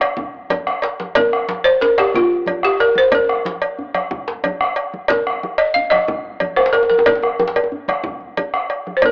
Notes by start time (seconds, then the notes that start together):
0.01 bombo rim, cowbell, djembe slap
0.17 bombo low, high conga, djembe tone, low conga
0.34 djembe slap
0.50 bombo rim, cowbell, djembe slap, high conga, djembe bass
0.67 bombo rim, djembe slap
0.82 cowbell, djembe slap
1.00 bombo rim, djembe slap, high conga
1.15 A#4, bombo low, cowbell, djembe slap, djembe tone, low conga, djembe bass
1.33 bombo rim, djembe slap
1.48 bombo rim, djembe slap, high conga
1.64 C5, cowbell
1.81 A#4, djembe slap, high conga, djembe bass
1.98 G4, bombo rim, cowbell, djembe slap
2.14 F4, bombo low, djembe slap, high conga, djembe tone, low conga
2.31 djembe slap, high conga
2.46 bombo rim, cowbell, djembe slap, high conga, djembe bass
2.63 G4, bombo rim, djembe slap
2.80 A#4, cowbell
2.95 C5, bombo rim, high conga
3.12 A#4, bombo rim, bombo low, cowbell, high conga, djembe tone, low conga, djembe bass
3.29 bombo rim, djembe slap
3.45 djembe slap, high conga
3.62 bombo rim, cowbell, djembe slap
3.79 bombo rim, djembe bass
3.95 bombo rim, cowbell, djembe slap, high conga
4.11 bombo rim, bombo low, djembe slap, djembe tone, high conga, low conga
4.27 djembe slap
4.43 bombo rim, cowbell, high conga, djembe bass
4.60 bombo rim, djembe slap, high conga
4.76 cowbell
4.94 high conga
5.08 A#4, bombo low, cowbell, djembe slap, djembe tone, djembe bass, low conga
5.27 bombo rim, djembe slap
5.43 bombo rim, high conga
5.58 D#5, cowbell
5.74 F5, high conga, djembe bass
5.90 D#5, bombo rim, cowbell, djembe slap, high conga
6.08 bombo low, djembe tone, high conga, low conga
6.24 djembe slap
6.40 bombo rim, cowbell, djembe slap, high conga, djembe bass
6.56 C5, bombo rim, djembe slap, djembe tone
6.66 djembe slap
6.72 A#4, cowbell, djembe tone
6.83 djembe tone
6.89 A#4, bombo rim, high conga
6.98 djembe tone
7.06 A#4, bombo low, cowbell, djembe slap, djembe tone, djembe bass, low conga
7.15 djembe tone
7.22 bombo rim, djembe slap, djembe tone
7.39 bombo rim, high conga, djembe tone
7.47 djembe slap
7.56 cowbell, djembe tone
7.64 djembe tone
7.72 high conga, djembe bass
7.88 bombo rim, cowbell, djembe slap, high conga
8.04 bombo low, high conga, djembe tone, low conga
8.20 djembe slap, high conga
8.37 bombo rim, cowbell, djembe slap, high conga, djembe bass
8.54 bombo rim, djembe slap
8.70 cowbell
8.87 bombo rim, high conga
8.97 C5
9.02 A#4, bombo low, cowbell, djembe tone, low conga, djembe bass